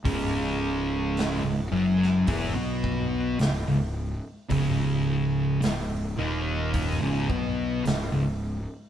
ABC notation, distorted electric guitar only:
X:1
M:4/4
L:1/16
Q:1/4=54
K:C#m
V:1 name="Distorted electric guitar" clef=bass
[C,,C,]4- [C,,C,] C,, [F,,F,]2 [E,,E,] [B,,B,]3 C,, C,,2 z | [C,,C,]4 C,,2 [D,,D,]3 [C,,C,] [B,,B,]2 C,, C,,2 z |]